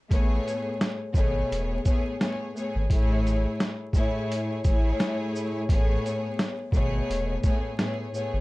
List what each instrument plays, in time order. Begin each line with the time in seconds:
0.10 sub bass A1, string section A2 A3 B3 G#4 C#5, kick, closed hi-hat
0.48 closed hi-hat, shaker
0.81 snare, closed hi-hat
1.14 sub bass G#1, string section B2 A3 B3 G#4 C#5, kick, shaker
1.51 sub bass E1, closed hi-hat
1.84 string section A2 A3 B3 G#4 C#5, kick, closed hi-hat, shaker
2.19 string section A2 A3 B3 G#4 C#5, snare, closed hi-hat
2.54 string section A2 A3 B3 G#4 C#5, shaker
2.75 sub bass G#1
2.89 sub bass A1, string section A2 A3 E4 G#4 C#5, kick, closed hi-hat
3.27 closed hi-hat, shaker
3.60 snare, closed hi-hat
3.93 string section A2 A3 E4 G#4 C#5, kick, shaker
4.32 closed hi-hat
4.64 sub bass A1, string section A2 A3 E4 G#4 C#5, kick, closed hi-hat, shaker
5.00 snare, closed hi-hat
5.36 shaker
5.68 sub bass A1, string section A2 A3 B3 G#4 C#5, kick, closed hi-hat
6.06 closed hi-hat, shaker
6.39 snare, closed hi-hat
6.72 sub bass G#1, string section B2 A3 B3 G#4 C#5, kick, shaker
7.10 sub bass E1, closed hi-hat
7.42 string section A2 A3 B3 G#4 C#5, kick, closed hi-hat, shaker
7.77 string section A2 A3 B3 G#4 C#5, snare, closed hi-hat
8.12 string section A2 A3 B3 G#4 C#5, shaker
8.33 sub bass G#1